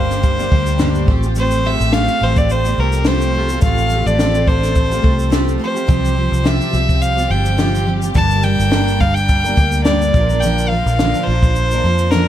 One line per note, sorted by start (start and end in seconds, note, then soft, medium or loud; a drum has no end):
0.00 0.48 G1 medium
0.00 1.06 D3 medium
0.00 0.39 G3 medium
0.00 1.04 G3 medium
0.00 0.38 A#3 medium
0.00 1.07 A#3 medium
0.00 0.37 D4 medium
0.00 0.36 G4 medium
0.00 3.30 G4 medium
0.00 1.08 C5 medium
0.10 snare soft
0.10 shaker soft
0.23 kick medium
0.23 shaker medium
0.37 0.50 G3 soft
0.37 0.51 A#3 medium
0.37 0.51 D4 soft
0.37 0.51 G4 medium
0.37 shaker soft
0.51 1.05 D2 medium
0.51 0.78 G3 medium
0.51 0.78 A#3 medium
0.51 0.79 D4 medium
0.51 0.79 G4 medium
0.51 kick medium
0.66 shaker medium
0.78 1.07 G2 medium
0.78 1.08 D3 medium
0.78 1.07 G3 medium
0.78 1.08 A#3 loud
0.78 1.08 D4 medium
0.78 1.09 G4 loud
0.78 snare loud
0.78 shaker medium
0.95 shaker medium
1.07 1.77 A1 medium
1.07 5.85 F3 medium
1.07 5.85 A3 medium
1.07 1.24 A3 medium
1.07 5.84 C4 medium
1.07 1.24 C4 medium
1.07 1.24 F4 medium
1.07 1.22 G4 medium
1.07 kick loud
1.23 1.36 C4 soft
1.23 1.36 F4 medium
1.23 1.36 G4 medium
1.23 shaker medium
1.35 1.62 A3 medium
1.35 1.64 C4 medium
1.35 1.64 F4 medium
1.35 1.65 G4 medium
1.35 shaker medium
1.40 1.68 C5 medium
1.51 shaker medium
1.63 1.92 A3 medium
1.63 1.92 C4 medium
1.63 1.93 F4 medium
1.63 1.94 G4 medium
1.63 1.95 E5 loud
1.80 2.07 A1 medium
1.80 shaker medium
1.93 2.19 A3 medium
1.93 2.21 C4 medium
1.93 2.21 F4 medium
1.93 2.22 G4 medium
1.93 2.25 F5 loud
1.93 snare loud
1.93 shaker medium
2.08 shaker medium
2.21 2.74 A1 medium
2.21 2.65 A3 medium
2.21 2.66 C4 medium
2.21 2.65 F4 medium
2.21 2.63 G4 medium
2.21 2.39 C5 loud
2.37 2.53 D5 loud
2.37 kick medium
2.37 shaker soft
2.50 2.81 C5 loud
2.50 shaker medium
2.64 2.77 C4 soft
2.64 2.78 F4 medium
2.64 2.78 G4 medium
2.64 shaker soft
2.78 3.59 C2 medium
2.78 3.06 A3 medium
2.78 3.06 C4 medium
2.78 3.07 F4 medium
2.78 3.07 G4 medium
2.78 3.08 A#4 medium
2.92 shaker medium
3.05 3.33 A3 medium
3.05 3.34 C4 medium
3.05 3.35 F4 medium
3.05 3.36 G4 medium
3.05 3.62 C5 medium
3.05 snare loud
3.05 shaker medium
3.21 shaker medium
3.34 3.50 A3 medium
3.34 3.51 C4 medium
3.34 3.51 F4 medium
3.34 3.49 G4 medium
3.34 5.87 A4 medium
3.49 3.63 C4 soft
3.49 3.64 F4 soft
3.49 3.63 G4 medium
3.49 shaker medium
3.62 4.03 A1 medium
3.62 3.90 A3 medium
3.62 3.91 C4 medium
3.62 3.92 F4 medium
3.62 3.93 G4 medium
3.62 4.08 F5 loud
3.62 kick loud
3.62 shaker medium
3.78 shaker medium
3.89 4.18 A3 medium
3.89 4.18 C4 medium
3.89 4.19 F4 medium
3.89 shaker soft
3.94 4.20 G4 medium
4.06 5.00 A1 loud
4.06 4.49 D5 medium
4.06 shaker soft
4.19 4.46 A3 medium
4.19 4.46 C4 medium
4.19 4.48 F4 medium
4.19 4.49 G4 medium
4.19 snare loud
4.19 shaker medium
4.35 shaker medium
4.47 4.91 A3 medium
4.47 4.91 C4 medium
4.47 4.90 F4 medium
4.47 4.89 G4 medium
4.47 5.33 C5 medium
4.47 kick medium
4.63 snare soft
4.63 shaker soft
4.76 kick medium
4.76 shaker medium
4.90 5.02 C4 soft
4.90 5.03 F4 soft
4.90 5.04 G4 medium
4.90 shaker soft
5.02 5.57 C2 medium
5.02 5.29 A3 medium
5.02 5.30 C4 medium
5.02 5.31 F4 medium
5.02 5.31 G4 medium
5.02 kick medium
5.19 shaker medium
5.30 5.57 A3 medium
5.30 5.58 C4 medium
5.30 5.59 F4 medium
5.30 5.60 G4 medium
5.30 snare loud
5.30 shaker medium
5.48 shaker medium
5.58 5.75 A3 medium
5.58 5.76 C4 medium
5.58 5.75 F4 medium
5.58 5.73 G4 medium
5.64 6.48 C5 medium
5.74 5.87 C4 soft
5.74 5.87 F4 soft
5.74 5.87 G4 medium
5.74 shaker medium
5.87 6.29 C2 loud
5.87 6.16 C3 medium
5.87 6.14 F3 medium
5.87 8.12 F3 medium
5.87 10.09 G3 medium
5.87 8.12 C4 medium
5.87 6.15 C4 medium
5.87 6.16 F4 medium
5.87 10.09 G4 medium
5.87 6.17 G4 medium
5.87 kick loud
5.87 shaker medium
6.05 shaker medium
6.15 6.43 F3 medium
6.15 6.44 C4 medium
6.15 6.45 F4 medium
6.15 6.44 G4 medium
6.32 6.58 C2 medium
6.32 shaker medium
6.44 6.73 C3 medium
6.44 6.70 F3 medium
6.44 6.72 C4 medium
6.44 6.73 F4 medium
6.44 6.73 G4 medium
6.44 7.03 E5 medium
6.44 snare loud
6.44 shaker medium
6.61 shaker medium
6.71 7.26 C2 medium
6.71 7.17 F3 medium
6.71 7.17 C4 medium
6.71 7.17 F4 medium
6.71 7.15 G4 medium
6.71 shaker soft
6.89 kick medium
6.89 shaker soft
7.02 7.32 F5 loud
7.02 shaker medium
7.16 7.29 C4 soft
7.16 7.29 F4 medium
7.16 7.30 G4 medium
7.16 shaker soft
7.29 8.11 G1 medium
7.29 7.57 F3 medium
7.29 7.57 C4 medium
7.29 7.58 F4 medium
7.29 7.58 G4 medium
7.29 7.87 G5 medium
7.45 shaker medium
7.57 7.87 C3 medium
7.57 7.84 F3 medium
7.57 7.86 C4 medium
7.57 7.86 F4 medium
7.57 7.87 G4 medium
7.57 snare loud
7.57 shaker medium
7.75 shaker medium
7.85 8.02 F3 medium
7.85 8.03 C4 medium
7.85 8.02 F4 medium
7.85 8.00 G4 medium
8.02 8.15 C4 soft
8.02 8.15 F4 soft
8.02 8.15 G4 medium
8.02 shaker medium
8.14 8.56 G1 loud
8.14 8.43 G2 medium
8.14 8.43 D3 medium
8.14 12.28 D3 medium
8.14 8.41 G3 medium
8.14 8.42 A#3 medium
8.14 12.28 A#3 medium
8.14 8.43 D4 medium
8.14 8.44 A#4 medium
8.14 8.45 A5 loud
8.14 kick loud
8.14 shaker medium
8.31 shaker medium
8.42 8.70 G3 medium
8.42 8.70 A#3 medium
8.42 8.71 D4 medium
8.42 8.71 A#4 medium
8.42 9.02 G5 loud
8.42 shaker soft
8.60 9.53 G1 loud
8.60 shaker medium
8.70 9.00 G2 medium
8.70 9.00 D3 medium
8.70 8.97 G3 medium
8.70 8.99 A#3 medium
8.70 9.00 D4 medium
8.70 9.00 A#4 medium
8.70 snare loud
8.70 shaker medium
8.88 shaker medium
8.98 9.43 G3 medium
8.98 9.44 A#3 medium
8.98 9.45 D4 medium
8.98 9.43 A#4 medium
8.98 9.16 F5 loud
8.98 kick medium
8.98 shaker soft
9.14 9.84 G5 loud
9.14 shaker soft
9.29 kick medium
9.29 shaker medium
9.44 9.55 G3 soft
9.44 9.56 A#3 soft
9.44 9.57 D4 medium
9.44 9.57 A#4 medium
9.44 shaker soft
9.56 10.10 D2 medium
9.56 9.85 G3 medium
9.56 9.86 A#3 medium
9.56 9.86 D4 medium
9.56 9.86 A#4 medium
9.56 kick medium
9.56 shaker medium
9.72 shaker medium
9.84 10.14 G2 medium
9.84 10.14 D3 medium
9.84 10.14 G3 medium
9.84 10.15 A#3 medium
9.84 10.15 D4 medium
9.84 10.15 A#4 medium
9.84 10.42 D5 medium
9.84 snare loud
9.84 shaker medium
10.02 shaker medium
10.14 10.82 A#1 medium
10.14 10.30 F3 medium
10.14 12.28 F3 medium
10.14 10.30 A#3 medium
10.14 10.31 D4 medium
10.14 12.28 F4 medium
10.14 10.29 A#4 medium
10.14 kick loud
10.14 shaker soft
10.30 10.43 F3 soft
10.30 10.43 A#3 soft
10.30 10.43 D4 medium
10.30 10.43 A#4 medium
10.30 shaker medium
10.40 10.71 A#2 medium
10.40 10.71 D3 medium
10.40 10.70 F3 medium
10.40 10.71 A#3 medium
10.40 10.72 D4 medium
10.40 10.70 G5 loud
10.40 shaker medium
10.45 10.72 A#4 medium
10.58 shaker medium
10.68 10.99 F3 medium
10.68 10.99 A#3 medium
10.68 11.25 F5 medium
10.73 10.99 D4 medium
10.73 11.00 A#4 medium
10.86 11.12 A#1 loud
10.86 shaker medium
10.99 11.27 A#2 medium
10.99 11.28 D3 medium
10.99 11.26 F3 medium
10.99 11.27 A#3 medium
10.99 11.28 D4 medium
10.99 11.29 A#4 medium
10.99 snare loud
10.99 shaker medium
11.14 shaker medium
11.24 11.80 A#1 medium
11.24 11.71 F3 medium
11.24 12.13 C5 loud
11.29 11.72 A#3 medium
11.29 11.72 D4 medium
11.29 11.71 A#4 medium
11.43 kick medium
11.43 shaker soft
11.56 shaker medium
11.71 11.83 F3 soft
11.71 11.84 A#3 soft
11.71 11.84 D4 medium
11.71 11.85 A#4 medium
11.71 shaker medium
11.84 12.28 F2 medium
11.84 12.12 F3 medium
11.84 12.13 A#3 medium
11.84 12.13 D4 medium
11.84 12.14 A#4 medium
11.98 shaker medium
12.11 12.28 A#2 medium
12.11 12.28 D3 medium
12.11 12.28 F3 medium
12.11 12.28 A#3 medium
12.11 12.28 D4 medium
12.11 12.28 A#4 medium
12.11 snare loud
12.11 shaker medium